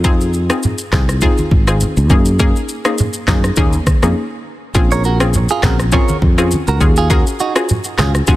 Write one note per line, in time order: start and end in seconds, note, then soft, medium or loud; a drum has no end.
0.00 0.49 F2 loud
0.04 0.27 C4 loud
0.04 0.27 D#4 medium
0.04 0.27 F4 medium
0.04 0.27 G#4 loud
0.04 kick loud
0.04 shaker medium
0.21 shaker medium
0.34 shaker soft
0.50 0.71 C4 medium
0.50 0.71 D#4 medium
0.50 0.71 F4 medium
0.50 0.71 G#4 medium
0.50 cross-stick loud
0.50 shaker soft
0.63 low conga medium
0.63 shaker medium
0.78 shaker medium
0.93 1.25 C2 medium
0.93 1.15 C4 medium
0.93 1.15 D#4 medium
0.93 1.16 F4 medium
0.93 1.16 G#4 medium
0.93 kick loud
0.93 cross-stick medium
0.93 clap medium
0.93 high conga medium
0.93 low conga medium
0.93 shaker medium
1.09 cross-stick medium
1.09 shaker medium
1.21 1.45 C4 medium
1.21 1.45 D#4 medium
1.21 1.45 F4 medium
1.21 1.45 G#4 loud
1.21 kick medium
1.21 low conga medium
1.21 shaker medium
1.38 high conga medium
1.38 shaker medium
1.51 1.84 G#1 medium
1.51 kick medium
1.51 high conga medium
1.67 1.89 C4 medium
1.67 1.89 D#4 medium
1.67 1.89 F4 medium
1.67 1.89 G#4 medium
1.67 cross-stick medium
1.67 shaker medium
1.81 high conga medium
1.81 shaker medium
1.97 2.10 C#2 medium
1.97 shaker medium
2.10 2.52 F#2 loud
2.10 2.33 A#3 medium
2.10 2.33 C#4 medium
2.10 2.33 D#4 medium
2.10 2.33 G#4 medium
2.10 kick loud
2.10 high conga medium
2.10 low conga medium
2.10 shaker soft
2.25 shaker medium
2.39 2.62 A#3 loud
2.39 2.62 C#4 medium
2.39 2.63 D#4 medium
2.39 2.63 G#4 loud
2.39 kick loud
2.39 shaker medium
2.56 shaker soft
2.69 shaker medium
2.85 3.06 A#3 medium
2.85 3.07 C#4 medium
2.85 3.07 D#4 medium
2.85 3.07 G#4 medium
2.85 cross-stick loud
2.85 shaker soft
2.98 low conga medium
2.98 shaker medium
3.13 shaker medium
3.28 3.49 F#2 medium
3.28 3.51 A#3 medium
3.28 3.51 C#4 medium
3.28 3.51 D#4 medium
3.28 3.51 G#4 medium
3.28 kick medium
3.28 cross-stick loud
3.28 clap medium
3.28 high conga medium
3.28 low conga medium
3.28 shaker medium
3.44 cross-stick medium
3.44 shaker medium
3.56 3.78 D#2 medium
3.56 3.80 A#3 loud
3.56 3.80 C#4 medium
3.56 3.80 D#4 medium
3.56 3.80 G#4 loud
3.56 kick medium
3.56 low conga medium
3.56 shaker medium
3.73 high conga medium
3.73 shaker soft
3.87 kick medium
3.87 cross-stick medium
3.87 high conga medium
3.87 shaker medium
4.03 4.12 F2 medium
4.03 4.16 A#3 medium
4.03 4.16 C#4 medium
4.03 4.16 D#4 medium
4.03 4.16 G#4 medium
4.03 cross-stick medium
4.03 shaker medium
4.75 5.46 A#1 loud
4.75 4.98 C4 medium
4.75 4.98 C#4 medium
4.75 4.98 F4 medium
4.75 4.98 G#4 loud
4.75 kick loud
4.75 shaker medium
4.91 5.03 A#4 medium
4.91 5.02 C#5 medium
4.91 shaker medium
5.04 5.18 F#4 medium
5.04 5.18 A#4 medium
5.04 shaker soft
5.20 5.42 C4 medium
5.20 5.42 C#4 medium
5.20 5.42 F4 medium
5.20 5.42 G#4 medium
5.20 cross-stick loud
5.20 shaker soft
5.34 low conga medium
5.34 shaker medium
5.49 5.61 F4 medium
5.49 5.61 G#4 medium
5.49 shaker medium
5.63 5.96 A#1 medium
5.63 5.86 C4 medium
5.63 5.86 C#4 medium
5.63 5.86 F4 medium
5.63 5.77 F#4 medium
5.63 5.86 G#4 medium
5.63 5.77 A#4 medium
5.63 kick loud
5.63 cross-stick medium
5.63 clap medium
5.63 high conga medium
5.63 low conga medium
5.63 shaker medium
5.79 cross-stick medium
5.79 shaker medium
5.92 6.15 C4 loud
5.92 6.15 C#4 medium
5.92 6.15 F4 medium
5.92 6.16 G#4 loud
5.92 6.17 A#4 medium
5.92 6.17 C#5 medium
5.92 kick medium
5.92 low conga medium
5.92 shaker medium
6.08 high conga medium
6.08 shaker soft
6.22 6.54 F2 medium
6.22 kick medium
6.22 high conga medium
6.38 6.59 C4 medium
6.38 6.60 C#4 medium
6.38 6.60 F4 medium
6.38 6.60 G#4 medium
6.38 cross-stick medium
6.38 shaker medium
6.51 high conga medium
6.51 shaker medium
6.68 6.81 C#2 medium
6.68 6.79 F#4 medium
6.68 6.79 A#4 medium
6.68 shaker soft
6.80 7.22 D#2 medium
6.80 7.03 C#4 medium
6.80 7.04 F4 medium
6.80 7.04 F#4 medium
6.80 7.04 G#4 medium
6.80 kick loud
6.80 high conga medium
6.80 low conga medium
6.80 shaker medium
6.96 7.09 F4 medium
6.96 7.08 G#4 medium
6.96 shaker medium
7.10 7.33 C#4 medium
7.10 7.33 F4 medium
7.10 7.33 F#4 medium
7.10 7.24 F#4 medium
7.10 7.33 G#4 loud
7.10 7.24 A#4 loud
7.10 kick loud
7.10 shaker medium
7.27 shaker medium
7.39 7.53 D#4 medium
7.39 7.53 F#4 medium
7.39 shaker medium
7.55 7.77 C#4 medium
7.55 7.77 F4 medium
7.55 7.77 F#4 medium
7.55 7.77 G#4 medium
7.55 cross-stick loud
7.55 shaker soft
7.69 low conga medium
7.69 shaker medium
7.84 shaker medium
7.98 8.20 C#2 loud
7.98 8.21 C#4 medium
7.98 8.21 F4 medium
7.98 8.12 F4 medium
7.98 8.21 F#4 medium
7.98 8.21 G#4 medium
7.98 8.12 G#4 medium
7.98 cross-stick medium
7.98 clap medium
7.98 high conga medium
7.98 low conga medium
7.98 shaker medium
8.15 cross-stick medium
8.15 shaker medium
8.27 8.36 D#2 medium
8.27 8.36 C#4 medium
8.27 8.36 F4 medium
8.27 8.36 F#4 medium
8.27 8.36 G#4 loud
8.27 kick medium
8.27 low conga medium
8.27 shaker medium